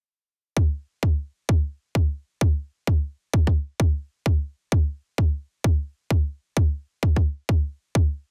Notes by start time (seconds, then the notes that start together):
0.57 kick
1.03 kick
1.49 kick
1.95 kick
2.41 kick
2.87 kick
3.34 kick
3.47 kick
3.80 kick
4.26 kick
4.72 kick
5.18 kick
5.64 kick
6.10 kick
6.57 kick
7.03 kick
7.16 kick
7.49 kick
7.95 kick